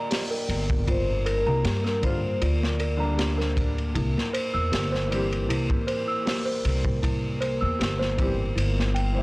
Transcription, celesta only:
Already playing: F4 G4 A#4 A#5
0.11 G4
0.31 A#4
0.87 F4
1.26 A#4
1.47 A#5
1.64 G4
1.84 A#4
2.42 F4
2.80 A#4
3.00 A#5
3.18 G4
3.38 A#4
3.95 E4
4.33 C5
4.54 E6
4.72 G4
4.92 C5
5.49 E4
5.87 C5
6.08 E6
6.26 G4
6.46 C5
7.03 E4
7.41 C5
7.61 E6
7.79 G4
7.99 C5
8.56 E4
8.95 G5
9.15 C5

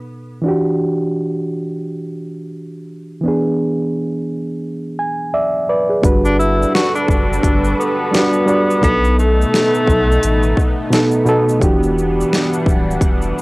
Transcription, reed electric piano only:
Already playing: B2 B3 D#4 A4
0.42 E3 D4
0.46 F#4 G4
3.21 E3 B3
3.26 D4 G#4
4.99 G#5
5.34 D5 E5
5.69 B4 D5
5.89 G#4
6.02 G3 D4 F#4 B4
8.11 G3 D4 F#4 D5
8.46 G3 D4 F#4 D5
8.81 B2 B3 D#4 A4
10.91 B2 B3 D#4 A4
11.25 B2 B3 D#4 A4
11.60 E3 D4 F#4 G4

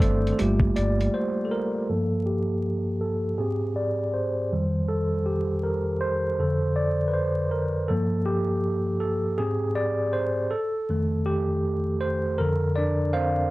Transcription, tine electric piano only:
Already playing: D#3 G3 A3 C4 D4 C5 D5
0.00 A3 A4
0.32 A4
0.38 G3 A3 A#3 F4 G4
0.76 D5
1.14 C5
1.45 A4
1.51 A#4
1.89 G2 F3 A#3 A4
2.26 G4
3.01 A4
3.38 G#2 C4 G4 G#4
3.76 D5
4.14 C5
4.52 F2 D#3 G3
4.88 A4
5.26 G4
5.63 A#4
6.00 C5
6.38 F2 D3 A4
6.75 D5
7.07 B4
7.13 C5
7.51 A#4
7.88 G2 F3 A#3 A4
8.26 G4
9.00 A4
9.38 G#2 C4 G4 G#4
9.76 D5
10.13 C5
10.51 A4
10.89 F2 D#3 A3
11.26 G4
12.01 C5
12.38 F2 D3 A4 A#4
12.75 D4 D5
13.13 C4 C5 F5

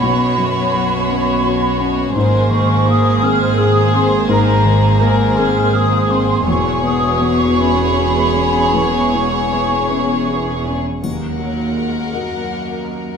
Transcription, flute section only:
Already playing: B5
2.13 C6
2.50 C#6
2.86 D#6
3.23 F6
3.59 D#6
3.95 C6
4.31 A#5
5.38 F6
5.75 D#6
6.10 C6
6.46 C#6
6.85 D#6
7.23 C#6
7.60 B5
8.75 C#6

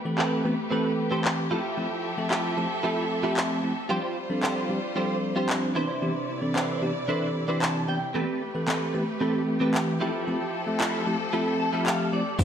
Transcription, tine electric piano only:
0.05 E3 A3 C4 A4 B4
0.45 E3 A3 B3 C4 G4
0.71 E3 A3 C4 A4 B4
1.11 E3 A3 C4 G4
1.51 F3 A3 C4 E4 G4
1.77 F3 A3 C4 E4 G4
2.17 F3 A3 C4 A4 E5
2.57 F3 A3 C4 E4 G4
2.84 F3 A3 C4 A4 E5
3.23 F3 A3 C4 G4 E5
3.63 F3 A3 C4 E4 G4
3.89 F3 G3 C4 D4 G4
4.29 F3 G3 C4 D4 A4
4.69 F3 G3 C4 D4 G4
4.95 F3 G3 C4 D4 A4
5.36 F3 G3 C4 D4 G4
5.75 E3 B3 C4 D4 G4
6.02 E3 B3 C4 D4 G4
6.42 E3 C4 D4 A4
6.82 E3 B3 C4 D4 G4
7.08 E3 C4 D4 A4
7.48 E3 C4 D4 G4
7.88 E3 B3 C4 D4 G4
8.14 E3 A3 B3 C4 G4
8.54 E3 A3 C4 A4 B4
8.94 E3 A3 B3 C4 G4
9.21 E3 A3 C4 A4 B4
9.61 E3 A3 C4 G4 B4
10.01 F3 A3 C4 E4 G4
10.27 F3 A3 C4 E4 G4
10.66 F3 A3 C4 A4 E5
11.06 F3 A3 C4 E4 G4
11.33 F3 A3 C4 A4 E5
11.73 F3 A3 C4 G4 E5
12.13 F3 A3 C4 E4 G4
12.39 G3 C4 D4 F4 C5

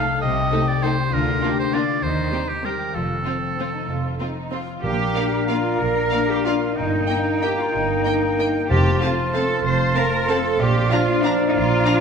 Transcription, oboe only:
Already playing: F5
0.21 D#5
0.68 D5
0.83 C5
1.13 A#4
1.59 C5
1.74 D5
2.03 C5
2.48 G4
2.65 A#4
2.95 A4
4.83 F5
6.77 G5
8.70 A5
10.59 F5

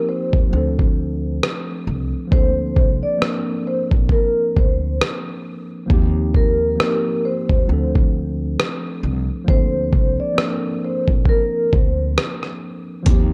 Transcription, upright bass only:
0.33 D#2
0.53 D2
1.87 C2
2.32 D2
2.77 C2
3.92 A#1
4.57 D2
5.90 D#2
7.50 D#2
7.69 D2
9.03 C2
9.48 D2
9.93 C2
11.08 A#1
11.73 D2
13.07 D#2

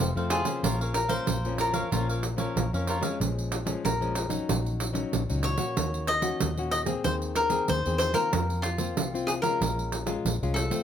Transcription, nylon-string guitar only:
0.00 C3
0.16 F3 A3 C4
0.44 F3 A#3 C#4
0.63 A#2
1.09 F3 A#3 C#4
1.28 F2
1.45 F3 A#3 C#4
1.93 A#2 F3 A#3 C#4
2.37 F3 A#3 C#4
2.57 F2
2.73 F3 A#3 C#4
3.01 F3 G#3 C#4
3.19 A#2
3.66 F3 G#3 C#4
3.83 F2
4.01 F3 G#3 C#4
4.29 F#3 C#4 D#4
4.48 A#2
4.93 F#3 C#4 D#4
5.12 A#2
5.29 F#3 C#4 D#4
5.58 A#3 C#4 F#4
5.77 D#3
6.22 A#3 C#4 F#4
6.41 A#2
6.58 A#3 C#4 F#4
6.86 A#3 C4 G#4
7.04 D#3
7.50 A#3 C4 G#4
7.69 D#3
7.86 A#3 C4 G#4
8.15 A#3 C4 F4
8.34 F3
8.79 A#3 C4 F4
8.98 C3
9.14 A#3 C4 F4
9.43 G#3 C#4 F4
9.62 A#2
10.06 G#3 C#4 F4
10.25 F2
10.43 G#3 C#4 F4
10.70 A3 C4 F4

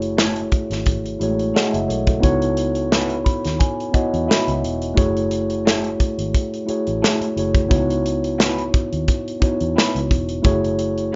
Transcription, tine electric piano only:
Already playing: A3 E4 F#4 G#4 C#5
1.19 G#3 E4 F#4 G#4
1.23 A3 C#5
1.56 D#5 F#5
1.73 C#5 E5
1.88 A4 C#5
2.07 F#4 A4
2.20 B3 D#4 E4 F#4 C#5
3.25 B5
3.59 G#5
3.92 B3 E4 F#4 D#5 F#5
3.97 C#5
4.28 E5
4.94 A3 E4 F#4 G#4
4.98 C#5
6.65 A3 E4 F#4 G#4
6.70 C#5
7.35 A3 E4 F#4 G#4 C#5
7.69 B3 D#4 E4 F#4 C#5
9.40 B3 D#4 E4 F#4 C#5
10.42 A3 E4 F#4 G#4 C#5

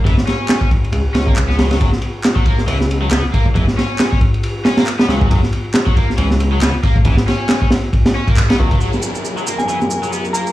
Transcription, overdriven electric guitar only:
0.05 E3
0.27 C#4
0.61 C#4
1.14 C#4
1.27 A#3
1.49 B3
1.58 F#3
1.71 F#3
1.80 F#3
2.36 F#3
2.46 A#3
2.67 E3
3.02 F#3
3.11 B3
3.34 A#3
3.55 E3
3.77 C#4
4.11 C#4
4.65 C#4
4.77 A#3
4.99 B3
5.09 F#3
5.21 F#3
5.31 F#3
5.87 F#3
5.96 A#3
6.18 E3
6.53 F#3
6.62 B3
6.84 A#3
7.06 E3
7.28 C#4
7.62 C#4
8.15 C#4
8.28 A#3
8.50 B3
8.59 F#3
8.72 F#3
8.81 F#3
9.37 F#3
9.47 A#3
9.69 E3
10.03 F#3
10.13 B3
10.34 A#3

